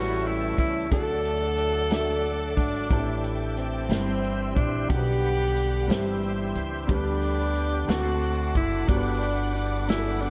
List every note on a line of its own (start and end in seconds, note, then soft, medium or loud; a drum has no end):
0.00 0.55 A1 medium
0.00 0.94 A2 medium
0.00 0.88 E3 medium
0.00 0.54 G3 medium
0.00 0.87 G3 medium
0.00 0.88 A3 soft
0.00 0.90 A3 medium
0.00 0.88 C#4 medium
0.00 0.94 C#4 medium
0.00 0.94 E4 medium
0.00 0.28 F#4 medium
0.00 0.94 G4 medium
0.00 0.93 A4 medium
0.00 0.54 B4 medium
0.00 0.90 E5 medium
0.00 3.86 A5 medium
0.00 0.90 C#6 medium
0.26 0.58 E4 medium
0.26 closed hi-hat soft
0.58 0.89 C#2 medium
0.58 0.90 E4 medium
0.58 kick medium
0.58 closed hi-hat medium
0.90 2.54 D2 medium
0.90 1.87 D3 medium
0.90 0.98 F3 soft
0.90 1.52 A3 medium
0.90 2.87 A3 medium
0.90 2.87 D4 medium
0.90 1.53 D4 medium
0.90 1.53 F#4 medium
0.90 2.87 A4 medium
0.90 2.54 A4 loud
0.90 1.53 A4 medium
0.90 2.89 D5 medium
0.90 1.54 D5 medium
0.90 2.89 F#5 medium
0.90 3.88 D6 medium
0.90 kick medium
0.90 closed hi-hat medium
0.98 2.90 F#3 medium
1.25 closed hi-hat medium
1.58 closed hi-hat medium
1.90 2.52 A3 medium
1.90 2.52 D4 medium
1.90 2.53 F#4 medium
1.90 2.53 A4 medium
1.90 2.53 E5 medium
1.90 snare medium
1.90 closed hi-hat medium
2.25 closed hi-hat soft
2.56 2.88 G#1 medium
2.56 3.26 D4 medium
2.56 kick medium
2.56 closed hi-hat medium
2.89 3.86 A1 medium
2.89 3.87 A2 medium
2.89 3.51 A3 medium
2.89 3.91 A3 medium
2.89 2.97 C4 medium
2.89 3.91 D4 soft
2.89 3.52 E4 medium
2.89 3.53 G4 medium
2.89 3.90 G4 medium
2.89 3.53 A4 medium
2.89 3.89 E5 medium
2.89 4.88 G5 medium
2.89 kick medium
2.89 closed hi-hat medium
2.93 3.89 E3 medium
2.93 3.55 D4 medium
3.24 closed hi-hat medium
3.57 4.57 C4 medium
3.57 closed hi-hat medium
3.89 4.52 G1 loud
3.89 4.86 G2 medium
3.89 4.90 E3 medium
3.89 4.51 G3 medium
3.89 4.89 G3 medium
3.89 4.51 C4 soft
3.89 4.90 C4 soft
3.89 4.52 E4 medium
3.89 4.91 G4 medium
3.89 4.52 G4 soft
3.89 4.53 C5 medium
3.89 4.89 E5 medium
3.89 4.89 C6 medium
3.89 4.89 E6 medium
3.89 snare medium
3.89 closed hi-hat medium
4.24 closed hi-hat soft
4.56 4.87 A#1 medium
4.56 4.89 D4 medium
4.56 kick medium
4.56 closed hi-hat medium
4.88 5.86 B1 medium
4.88 5.85 B2 medium
4.88 5.90 D3 medium
4.88 5.89 G3 soft
4.88 5.50 B3 medium
4.88 5.90 B3 soft
4.88 5.51 D4 medium
4.88 6.52 G4 medium
4.88 5.51 G4 medium
4.88 7.87 G4 medium
4.88 4.97 A#4 medium
4.88 5.51 F#5 medium
4.88 5.90 F#5 medium
4.88 5.89 B5 medium
4.88 5.89 D6 medium
4.88 kick loud
4.88 closed hi-hat medium
4.92 5.90 F#5 medium
4.98 5.55 B4 medium
5.24 closed hi-hat medium
5.56 closed hi-hat medium
5.87 6.52 G1 medium
5.87 6.85 G2 medium
5.87 6.90 E3 medium
5.87 6.50 G3 medium
5.87 6.89 G3 medium
5.87 6.50 C4 medium
5.87 6.90 C4 medium
5.87 6.51 E4 medium
5.87 6.51 G4 medium
5.87 6.88 G4 medium
5.87 6.51 C5 medium
5.87 6.89 E5 medium
5.87 6.89 C6 medium
5.87 snare loud
5.87 closed hi-hat medium
5.92 6.89 E6 medium
6.23 closed hi-hat soft
6.55 6.86 C#2 medium
6.55 closed hi-hat medium
6.87 7.85 D2 loud
6.87 7.85 D3 medium
6.87 7.87 D3 medium
6.87 7.50 G3 medium
6.87 7.89 G3 soft
6.87 7.50 B3 medium
6.87 7.89 B3 medium
6.87 7.50 D4 medium
6.87 7.91 D4 medium
6.87 7.89 G4 medium
6.87 7.51 G4 medium
6.87 7.51 B4 medium
6.87 7.88 D5 medium
6.87 7.88 B5 medium
6.87 10.30 D6 medium
6.87 kick medium
6.87 closed hi-hat medium
7.22 closed hi-hat soft
7.55 closed hi-hat medium
7.87 8.51 D2 medium
7.87 8.85 D3 medium
7.87 8.49 A3 medium
7.87 8.88 A3 medium
7.87 8.88 C4 soft
7.87 8.50 C4 medium
7.87 8.51 D4 medium
7.87 7.96 E4 soft
7.87 8.88 F#4 medium
7.87 8.56 F#4 medium
7.87 8.51 A4 medium
7.87 10.30 F#5 medium
7.87 8.88 A5 medium
7.87 8.88 C6 medium
7.87 snare loud
7.87 closed hi-hat medium
7.96 8.54 F#4 medium
8.22 closed hi-hat soft
8.55 8.86 F#1 medium
8.55 8.90 E4 medium
8.55 kick medium
8.55 closed hi-hat medium
8.86 10.30 G1 medium
8.86 9.84 G2 medium
8.86 10.30 D3 medium
8.86 10.30 G3 medium
8.86 9.49 B3 medium
8.86 10.30 B3 soft
8.86 9.49 D4 medium
8.86 9.55 D4 medium
8.86 9.50 F#4 medium
8.86 9.50 G4 medium
8.86 8.96 A#4 medium
8.86 10.30 D5 medium
8.86 10.30 F#5 medium
8.86 10.30 B5 medium
8.86 kick medium
8.86 closed hi-hat medium
8.96 9.54 B4 medium
9.23 closed hi-hat soft
9.55 9.86 D4 medium
9.55 closed hi-hat medium
9.87 10.30 B3 medium
9.87 10.30 D4 medium
9.87 10.23 E4 medium
9.87 10.30 F#4 medium
9.87 10.30 G4 medium
9.87 9.96 G#4 medium
9.87 snare loud
9.87 closed hi-hat medium
9.96 10.30 A4 medium
10.21 10.30 D4 medium
10.21 closed hi-hat soft